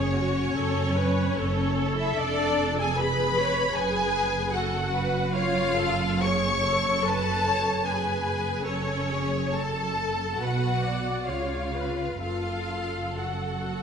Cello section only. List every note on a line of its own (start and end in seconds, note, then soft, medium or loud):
0.00 0.46 F#2 medium
0.56 1.27 F#2 medium
1.37 2.08 F#2 medium
2.19 3.71 F2 medium
3.76 8.65 F#2 medium
8.67 10.37 F#2 medium
10.41 11.28 B2 medium
11.29 12.22 C#3 medium
12.21 13.82 F#2 medium